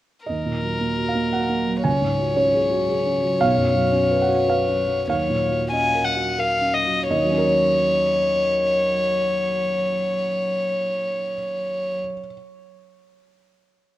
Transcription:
0.26 D#2 F#3 A#4 D#5
0.45 A#2
0.62 F#3
0.80 A#3
0.97 F#4
1.08 F5
1.15 A#3
1.33 F#4 F#5
1.49 A#3
1.67 F#3
1.84 C#2 C#5 G#5
2.02 G#2
2.20 F#3
2.36 C#4 C#5
2.53 G#4
2.71 F#4
2.89 G#4
3.06 C#4
3.23 F#3
3.40 B1 F#3 F5
3.57 F#2
3.75 F#3
3.91 C#4
4.11 B4
4.22 F#5
4.28 F#4
4.48 B4 F5
4.68 C#4
4.87 F#3
5.07 D#2 C#5 F5
5.29 A#2
5.50 F#3
5.71 C#4 D#5 G#5
5.95 A#4
6.04 F#5
6.16 F#4
6.38 A#4 F5
6.61 C#4
6.73 D#5
6.86 F#3
7.09 D#2 F#3 C#5 D#5
7.16 D#3
7.24 F#3
7.30 C#4
7.38 A#4
7.45 C#5

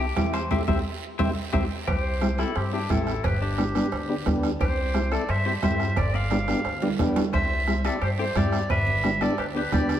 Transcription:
0.00 G4
0.16 E2 C4 E4 G4, bombo low, bombo rim, high conga, high timbale, low timbale, short guiro
0.33 C5, bombo rim, high timbale, short guiro
0.51 C2 C4 E4 G4 C5 E5, bombo low, high conga, high timbale, long guiro
0.68 C2 C4 E4 G4 C5 E5, bombo low, high conga, high timbale, long guiro
1.19 C2 C4 E4 G4 C5 E5, bombo low, high conga, high timbale, long guiro
1.53 C2 C4 E4 G4 C5 E5, bombo low, high conga, high timbale, long guiro
1.87 C2 G4 C5, bombo low, bombo rim, cowbell, long guiro
2.21 C4 E4 G4, bombo rim, high conga, short guiro
2.38 C4 E4 G4 A4, bombo rim, high conga, short guiro
2.55 G2 C4 G4, bombo rim, cowbell, long guiro
2.72 C4 D4 E4 G4
2.89 A1 C4 E4 G4 A4, bombo low, bombo rim, high conga, short guiro
3.07 bombo rim, short guiro
3.24 G1 G4 B4, bombo low, bombo rim, cowbell, long guiro
3.42 D4 G4
3.58 B3 D4 G4, bombo rim, high conga, short guiro
3.75 B3 D4 G4, bombo rim, high conga, short guiro
3.92 D2, bombo rim, cowbell, long guiro
4.09 B3 D4 G4
4.26 D2 B3 D4 G4, bombo low, bombo rim, high conga, low conga, low timbale, short guiro
4.43 bombo rim, short guiro
4.60 C2 G4 C5, bombo low, bombo rim, cowbell, long guiro
4.94 C4 E4 G4, bombo rim, high conga, short guiro
5.12 C4 E4 A4 D5, bombo rim, short guiro
5.29 G2 C5 E5, bombo rim, cowbell, long guiro
5.46 C4 E4 G4 C5 E5
5.63 G2 C4 E4 G4 C5 E5, bombo low, bombo rim, high conga, low timbale, short guiro
5.80 bombo rim, short guiro
5.96 G1 G4 D5, bombo low, bombo rim, cowbell, high timbale, long guiro
6.14 D5 F5, high timbale
6.31 B3 D4 G4, bombo rim, high conga, high timbale, short guiro
6.48 B3 D4 G4, bombo rim, high conga, high timbale, short guiro
6.65 D2, bombo rim, cowbell, long guiro
6.82 B3 D4 G4, low timbale
6.99 E2 B3 D4 G4, bombo low, bombo rim, high conga, low conga, low timbale, short guiro
7.16 D2, bombo rim, low timbale, short guiro
7.33 C2 C5 E5, bombo low, bombo rim, cowbell, long guiro
7.67 C4 E4 G4, bombo rim, high conga, short guiro
7.84 C4 E4 G4 A4 D5, bombo rim, short guiro
8.02 G2 G4 C5, bombo rim, cowbell, long guiro
8.19 C4 E4 G4 A4 C5
8.36 G2 C4 E4 G4 D5, bombo low, bombo rim, high conga, short guiro
8.53 bombo rim, short guiro
8.70 G1 B4 E5, bombo low, bombo rim, cowbell, long guiro
8.87 low conga
9.04 B3 D4 G4, bombo rim, high conga, short guiro
9.21 B3 D4 G4 A4 D5, bombo rim, high conga, short guiro
9.38 D2 G4 B4, bombo rim, cowbell, long guiro
9.55 B3 D4 G4 B4
9.72 D2 B3 D4 G4 D5, bombo low, bombo rim, high conga, low conga, short guiro
9.89 bombo rim, short guiro

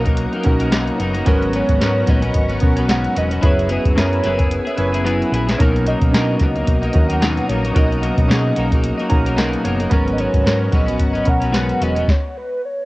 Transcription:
Already playing: B1 B3 C#4 D#4 F#4 A#4 F#5 A#5 D#6
0.05 F#3 A#3 D#4, kick, closed hi-hat
0.17 closed hi-hat
0.32 F#3 A#3 D#4, closed hi-hat
0.43 B1 C#4 D#4 F#4 A#4, kick, closed hi-hat
0.59 F#3 A#3 D#4, closed hi-hat
0.71 B2 F#3 A#3 D#4, snare, closed hi-hat
0.87 closed hi-hat
0.98 F#1 B2 F#3 A#3 D#4, closed hi-hat
1.14 F#3 A#3 D#4, closed hi-hat
1.25 G#1 G#2 F#3 B3 C#4 F#4 A#4 C#6, kick, closed hi-hat
1.42 closed hi-hat
1.53 G#2 F#3 B3 C#4 C#5, closed hi-hat
1.69 G#1, kick, closed hi-hat
1.80 G#2 F#3 B3 C#4 F#4 A#4, snare, closed hi-hat
2.07 A#1 G#2 F#3 B3 C#4 D#5, kick, snare, closed hi-hat
2.22 F#3 B3 C#4, closed hi-hat
2.34 G#1, kick, closed hi-hat
2.48 F#3 B3 C#4, closed hi-hat
2.60 B1 B3 C#4 F#4 A#4 F#5, kick, closed hi-hat
2.76 F#3 B3 C#4, closed hi-hat
2.88 G#2 F#3 B3 C#4 F#5, snare, closed hi-hat
3.04 closed hi-hat
3.14 E1 G#2 F#3 B3 C#4 D#5, closed hi-hat
3.29 F#3 B3 C#4, closed hi-hat
3.41 F#1 F#3 B3 C#4 E4 G#4 B4 C#5 G#5 E6, kick, closed hi-hat
3.59 closed hi-hat
3.69 F#3 B3 E4 G#4 B4, closed hi-hat
3.85 F#1, kick, closed hi-hat
3.96 F#2 F#3 B3 C#4 E4 G#4 A#4 C#5, snare, closed hi-hat
4.13 closed hi-hat
4.23 F#1 F#3 B3 E4 G#4, snare, closed hi-hat
4.38 B3 E4 G#4, kick, closed hi-hat
4.51 closed hi-hat
4.65 B3 E4 G#4, closed hi-hat
4.77 F#1 C#4 E4 G#4 B4, closed hi-hat
4.92 B3 E4 G#4, closed hi-hat
5.04 F#3 B3 E4 G#4, closed hi-hat
5.22 closed hi-hat
5.32 A#1 F#3 B3 E4 G#4, closed hi-hat
5.47 B3 E4 G#4, snare, closed hi-hat
5.58 B1 B2 F#3 A#3 C#4 D#4 F#4 A#4 F#5 A#5 D#6, kick, closed hi-hat
5.76 closed hi-hat
5.86 B2 F#3 A#3 D#4 D#5, closed hi-hat
6.01 B1, kick, closed hi-hat
6.12 B2 F#3 A#3 C#4 D4 F#4 A#4, snare, closed hi-hat
6.16 D#4
6.39 C#2 B2 F#3 A#3 D#5, kick, snare, closed hi-hat
6.44 D#4
6.55 F#3 A#3 D#4, closed hi-hat
6.67 B1, kick, closed hi-hat
6.82 F#3 A#3 D#4, closed hi-hat
6.93 D#2 C#4 D#4 F#4 A#4, kick, closed hi-hat
7.09 F#3 A#3 D#4 F#5, closed hi-hat
7.21 B2 F#3 A#3 D#4, snare, closed hi-hat
7.37 closed hi-hat
7.48 A#1 B2 F#3 A#3 D#4 C#5, closed hi-hat
7.62 F#3 A#3 D#4, closed hi-hat
7.74 B1 B2 F#3 A#3 C#4 D#4 F#4 A#4 D#5, kick, closed hi-hat
7.92 closed hi-hat
8.01 B2 F#3 A#3 D#4, closed hi-hat
8.18 B1 D#5, kick, closed hi-hat
8.28 B2 F#3 A#3 C#4 D#4 F#4 G#4, snare, closed hi-hat
8.56 B1 B2 F#3 A#3 D#4, closed hi-hat
8.71 F#3 A#3 D#4, kick, closed hi-hat
8.84 closed hi-hat
8.98 F#3 A#3 D#4, closed hi-hat
9.09 B1 C#4 D#4 F#4 A#4 A#5, kick, closed hi-hat
9.25 F#3 A#3 D#4, closed hi-hat
9.36 B2 F#3 A#3 D#4 F#5, snare, closed hi-hat
9.53 closed hi-hat
9.64 F#1 B2 F#3 A#3 D#4 C#5, closed hi-hat
9.79 F#3 A#3 D#4, closed hi-hat
9.90 G#1 G#2 F#3 B3 C#4 F#4 A#4 F#5 C#6, kick, closed hi-hat
10.08 closed hi-hat
10.13 D#5
10.18 G#2 F#3 B3 C#4 C#5, closed hi-hat
10.34 G#1, kick, closed hi-hat
10.44 G#2 F#3 B3 C#4 F#4 A#4, snare, closed hi-hat
10.71 A#1 G#2 F#3 B3 C#4 D#5, kick, snare, closed hi-hat
10.86 F#3 B3 C#4, closed hi-hat
10.99 G#1, kick, closed hi-hat
11.13 F#3 B3 C#4, closed hi-hat
11.25 B1 B3 C#4 F#4 A#4, kick, closed hi-hat
11.29 F#5
11.40 F#3 B3 C#4, closed hi-hat
11.52 G#2 F#3 B3 C#4 F#5, snare, closed hi-hat
11.69 closed hi-hat
11.80 E1 G#2 F#3 B3 C#4 D#5, closed hi-hat
11.95 F#3 B3 C#4, closed hi-hat
12.08 C#5, kick, snare
12.37 B4
12.65 C#5

